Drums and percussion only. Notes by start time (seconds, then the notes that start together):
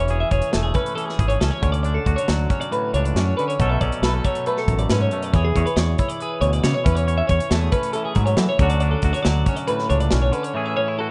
0.08 closed hi-hat
0.31 kick, closed hi-hat
0.42 closed hi-hat
0.53 snare, closed hi-hat
0.74 kick, closed hi-hat
0.86 closed hi-hat
0.98 closed hi-hat
1.09 snare
1.19 kick, closed hi-hat
1.30 closed hi-hat
1.41 snare, closed hi-hat
1.63 kick, closed hi-hat
1.74 closed hi-hat
1.84 closed hi-hat
2.06 kick, closed hi-hat
2.18 closed hi-hat
2.28 snare, closed hi-hat
2.50 kick, closed hi-hat
2.61 closed hi-hat
2.72 closed hi-hat
2.94 closed hi-hat
3.05 closed hi-hat
3.16 snare, closed hi-hat
3.39 closed hi-hat
3.50 closed hi-hat
3.60 kick, closed hi-hat
3.81 kick, closed hi-hat
3.92 closed hi-hat
4.03 snare, closed hi-hat
4.24 kick, closed hi-hat
4.35 closed hi-hat
4.46 closed hi-hat
4.57 snare
4.68 kick, closed hi-hat
4.79 closed hi-hat
4.89 snare, closed hi-hat
5.11 closed hi-hat
5.22 closed hi-hat
5.34 kick, closed hi-hat
5.56 kick, closed hi-hat
5.67 closed hi-hat
5.77 snare, closed hi-hat
5.98 kick, closed hi-hat
6.09 closed hi-hat
6.21 closed hi-hat
6.42 closed hi-hat
6.53 closed hi-hat
6.64 snare, closed hi-hat
6.86 kick, closed hi-hat
6.97 closed hi-hat
7.08 closed hi-hat
7.29 kick, closed hi-hat
7.40 closed hi-hat
7.51 snare, closed hi-hat
7.72 kick, closed hi-hat
7.83 closed hi-hat
7.93 closed hi-hat
8.15 kick, closed hi-hat
8.27 closed hi-hat
8.37 snare, closed hi-hat
8.59 kick, closed hi-hat
8.70 closed hi-hat
8.80 closed hi-hat
9.02 kick, closed hi-hat
9.14 closed hi-hat
9.25 snare, closed hi-hat
9.46 kick, closed hi-hat
9.57 closed hi-hat
9.68 closed hi-hat
9.79 snare
9.90 closed hi-hat
10.00 closed hi-hat
10.11 snare, closed hi-hat
10.33 closed hi-hat
10.44 closed hi-hat